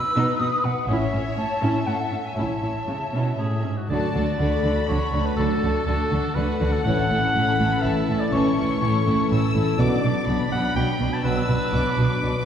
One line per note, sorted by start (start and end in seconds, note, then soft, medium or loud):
0.00 0.84 B4 soft
0.00 0.88 B4 medium
0.00 0.41 E6 medium
0.16 0.24 B2 medium
0.16 0.38 B3 medium
0.16 0.38 D#4 medium
0.39 0.48 B2 soft
0.39 0.48 B3 soft
0.39 0.48 D#4 soft
0.39 0.65 D#6 medium
0.64 0.72 B2 soft
0.64 0.72 B3 medium
0.64 0.88 F#5 medium
0.88 1.11 A1 medium
0.88 0.96 A2 medium
0.88 1.11 C#4 medium
0.88 1.11 E4 medium
0.88 1.85 C#5 medium
0.88 1.36 E5 medium
0.88 3.65 E5 soft
1.12 1.21 A2 soft
1.12 1.21 C#4 soft
1.12 1.20 E4 soft
1.36 1.45 A2 soft
1.36 1.45 C#4 soft
1.36 1.88 A5 medium
1.61 1.70 A2 medium
1.61 1.85 C#4 medium
1.61 1.85 E4 medium
1.86 1.94 A2 soft
1.86 1.94 C#4 soft
1.86 1.94 E4 soft
1.86 2.36 A4 soft
1.86 2.26 F#5 medium
2.11 2.19 A2 soft
2.11 2.20 C#4 soft
2.25 2.38 G#5 soft
2.35 2.61 A1 soft
2.35 2.44 A2 soft
2.35 2.60 C#4 soft
2.35 2.60 E4 soft
2.35 3.62 C#5 soft
2.35 3.64 A5 soft
2.61 2.70 A2 soft
2.61 2.69 C#4 soft
2.61 2.70 E4 soft
2.88 2.96 C#3 soft
2.88 2.96 C#4 soft
3.13 3.38 B2 soft
3.13 3.37 C#4 soft
3.13 3.37 E4 soft
3.38 3.64 A2 soft
3.38 3.46 C#4 soft
3.38 3.46 E4 soft
3.38 3.79 G#4 soft
3.63 3.90 G#2 soft
3.63 3.72 C#4 soft
3.77 3.89 F#4 soft
3.89 3.98 D2 soft
3.89 5.36 D3 soft
3.89 3.98 D3 soft
3.89 4.07 F#3 soft
3.89 4.13 A3 soft
3.89 4.13 D4 soft
3.89 4.08 D4 soft
3.89 4.14 F#4 soft
3.89 4.14 A4 soft
3.89 4.86 D5 medium
3.89 4.36 A5 soft
4.06 4.54 D4 soft
4.14 4.23 D2 soft
4.14 4.23 D3 soft
4.14 4.37 A3 soft
4.14 4.38 D4 soft
4.14 4.38 F#4 soft
4.14 4.38 A4 soft
4.22 4.87 F#4 soft
4.39 4.47 D2 soft
4.39 4.48 D3 soft
4.39 4.62 A3 soft
4.39 4.61 D4 soft
4.39 4.63 F#4 soft
4.39 5.03 A4 soft
4.39 4.63 A4 soft
4.39 5.38 B5 medium
4.55 5.20 D4 soft
4.63 4.72 D2 soft
4.63 4.72 D3 soft
4.63 4.86 A3 soft
4.63 4.86 D4 soft
4.63 4.87 F#4 soft
4.63 4.87 A4 soft
4.72 5.52 A3 soft
4.87 4.96 D2 soft
4.87 4.97 D3 soft
4.87 5.11 A3 soft
4.87 5.11 D4 soft
4.87 5.69 F#4 soft
4.87 5.11 F#4 soft
4.87 5.12 A4 soft
4.87 5.27 C#5 medium
5.05 5.85 A4 soft
5.12 5.21 D2 soft
5.12 5.21 D3 soft
5.12 5.36 A3 soft
5.12 5.36 D4 soft
5.12 5.37 F#4 soft
5.12 5.37 A4 soft
5.21 6.01 D4 soft
5.26 5.36 B4 medium
5.37 5.45 D2 soft
5.37 6.87 D3 medium
5.37 5.46 D3 soft
5.37 5.54 F#3 medium
5.37 5.60 A3 soft
5.37 5.60 D4 soft
5.37 5.54 D4 medium
5.37 5.61 F#4 soft
5.37 5.85 A4 medium
5.37 5.61 A4 soft
5.37 6.36 A5 soft
5.54 6.18 A3 soft
5.61 5.70 D2 soft
5.61 5.71 D3 soft
5.61 5.86 A3 soft
5.61 5.85 D4 soft
5.61 5.85 F#4 soft
5.61 5.85 A4 soft
5.70 6.34 F#4 soft
5.86 5.94 D2 soft
5.86 5.96 D3 soft
5.86 6.10 A3 soft
5.86 6.10 D4 soft
5.86 6.09 F#4 soft
5.86 6.09 A4 soft
5.86 6.36 A4 medium
6.03 6.67 D4 soft
6.10 6.18 D2 soft
6.10 6.20 D3 soft
6.10 6.34 A3 soft
6.10 6.35 D4 soft
6.10 6.35 F#4 soft
6.10 6.34 A4 soft
6.35 6.43 D2 soft
6.35 6.44 D3 soft
6.35 6.60 A3 soft
6.35 6.59 D4 soft
6.35 6.87 F#4 soft
6.35 6.60 F#4 soft
6.35 6.60 A4 soft
6.35 6.74 B4 medium
6.35 7.32 F#5 medium
6.51 7.33 A4 soft
6.60 6.68 D2 soft
6.60 6.68 D3 soft
6.60 6.85 A3 soft
6.60 6.85 D4 soft
6.60 6.85 F#4 soft
6.60 6.84 A4 soft
6.68 6.87 D4 soft
6.73 6.84 A4 soft
6.84 6.93 A1 medium
6.84 8.31 A2 medium
6.84 6.93 A2 soft
6.84 7.55 A2 medium
6.84 7.03 E3 medium
6.84 7.09 A3 soft
6.84 7.09 C#4 soft
6.84 7.03 C#4 medium
6.84 7.09 E4 medium
6.84 7.09 A4 medium
6.84 7.84 F#5 medium
7.02 7.49 C#4 soft
7.10 7.18 A1 soft
7.10 7.18 A2 soft
7.10 7.34 A3 soft
7.10 7.34 C#4 soft
7.10 7.34 E4 soft
7.10 7.34 A4 soft
7.18 7.82 E4 soft
7.34 7.43 A1 medium
7.34 7.43 A2 medium
7.34 7.58 A3 soft
7.34 7.58 C#4 soft
7.34 7.58 E4 soft
7.34 7.99 A4 soft
7.34 7.58 A4 soft
7.34 7.82 B5 medium
7.51 8.15 C#4 soft
7.58 7.66 A1 medium
7.58 7.67 A2 medium
7.58 7.82 A3 soft
7.58 7.82 C#4 soft
7.58 7.82 E4 soft
7.58 7.82 A4 medium
7.67 8.47 E3 soft
7.82 7.91 A1 medium
7.82 7.92 A2 medium
7.82 8.07 A3 soft
7.82 8.07 C#4 soft
7.82 8.64 E4 soft
7.82 8.07 E4 soft
7.82 8.07 A4 soft
7.82 8.21 E5 medium
7.82 8.32 A5 soft
8.00 8.79 A4 soft
8.08 8.16 A1 medium
8.08 8.16 A2 medium
8.08 8.32 A3 soft
8.08 8.32 C#4 soft
8.08 8.32 E4 soft
8.08 8.32 A4 soft
8.16 8.96 C#4 soft
8.20 8.32 D5 medium
8.32 8.40 A1 medium
8.32 8.40 A2 soft
8.32 9.80 A2 medium
8.32 8.50 E3 medium
8.32 8.55 A3 soft
8.32 8.50 C#4 medium
8.32 8.55 C#4 medium
8.32 8.56 E4 medium
8.32 8.56 A4 medium
8.32 8.80 C#5 medium
8.32 9.30 C#6 medium
8.49 9.12 E3 soft
8.56 8.65 A1 medium
8.56 8.65 A2 soft
8.56 8.80 A3 medium
8.56 8.80 C#4 soft
8.56 8.80 E4 soft
8.56 8.80 A4 soft
8.65 9.29 E4 soft
8.80 8.89 A1 medium
8.80 8.89 A2 medium
8.80 9.05 A3 medium
8.80 9.05 C#4 medium
8.80 9.05 E4 medium
8.80 9.45 A4 soft
8.80 9.05 A4 soft
8.80 9.29 C#5 medium
8.97 9.61 C#4 soft
9.05 9.14 A1 medium
9.05 9.13 A2 medium
9.05 9.28 A3 medium
9.05 9.28 C#4 soft
9.05 9.29 E4 soft
9.05 9.30 A4 soft
9.13 9.80 E3 soft
9.29 9.38 A1 soft
9.29 9.37 A2 medium
9.29 9.53 A3 soft
9.29 9.53 C#4 soft
9.29 9.80 E4 soft
9.29 9.54 E4 medium
9.29 9.54 A4 medium
9.29 9.77 E6 medium
9.46 9.80 A4 soft
9.54 9.62 A1 medium
9.54 9.62 A2 medium
9.54 9.78 A3 soft
9.54 9.78 C#4 medium
9.54 9.78 E4 soft
9.54 9.79 A4 medium
9.62 9.80 C#4 soft
9.78 9.86 B1 medium
9.78 9.86 B2 medium
9.78 11.22 B2 medium
9.78 9.95 F#3 medium
9.78 10.03 F#3 medium
9.78 9.95 B3 medium
9.78 10.03 B3 medium
9.78 10.02 D4 medium
9.78 10.47 D5 medium
9.78 10.27 D6 medium
9.94 10.41 B3 soft
10.03 10.11 B1 medium
10.03 10.11 B2 medium
10.03 10.26 F#3 soft
10.03 10.26 B3 medium
10.03 10.27 D4 medium
10.10 10.74 D4 soft
10.27 10.35 B1 medium
10.27 10.36 B2 medium
10.27 10.51 F#3 soft
10.27 10.50 B3 medium
10.27 10.52 D4 soft
10.27 11.25 B5 medium
10.43 11.06 B3 soft
10.51 10.59 B1 medium
10.51 10.60 B2 medium
10.51 10.75 F#3 soft
10.51 10.74 B3 medium
10.51 10.76 D4 medium
10.51 10.75 F#5 medium
10.59 11.39 F#3 soft
10.75 10.83 B1 medium
10.75 10.84 B2 medium
10.75 10.99 F#3 soft
10.75 10.98 B3 soft
10.75 11.55 D4 soft
10.75 11.00 D4 medium
10.75 11.15 G5 medium
10.91 11.71 F#4 soft
10.99 11.08 B1 medium
10.99 11.07 B2 medium
10.99 11.23 F#3 soft
10.99 11.23 B3 soft
10.99 11.24 D4 soft
11.07 11.88 B3 soft
11.13 11.24 A5 medium
11.23 11.33 B1 medium
11.23 12.45 B2 medium
11.23 11.32 B2 medium
11.23 11.47 F#3 medium
11.23 11.42 F#3 medium
11.23 11.47 B3 medium
11.23 11.41 B3 medium
11.23 11.47 D4 medium
11.23 12.22 B4 loud
11.23 11.72 E6 medium
11.40 12.04 F#3 soft
11.48 11.57 B1 medium
11.48 11.56 B2 medium
11.48 11.72 F#3 medium
11.48 11.72 B3 soft
11.48 11.72 D4 soft
11.56 12.21 D4 soft
11.72 11.82 B1 medium
11.72 11.81 B2 medium
11.72 11.97 F#3 medium
11.72 11.96 B3 soft
11.72 11.97 D4 medium
11.72 12.38 F#4 medium
11.72 12.45 D6 medium
11.89 12.45 B3 soft
11.97 12.06 B1 medium
11.97 12.05 B2 medium
11.97 12.21 F#3 medium
11.97 12.21 B3 soft
11.97 12.22 D4 soft
12.05 12.45 F#3 soft
12.22 12.30 B1 medium
12.22 12.31 B2 medium
12.22 12.45 F#3 soft
12.22 12.45 B3 soft
12.22 12.45 D4 soft
12.22 12.45 B4 medium
12.39 12.45 F#4 soft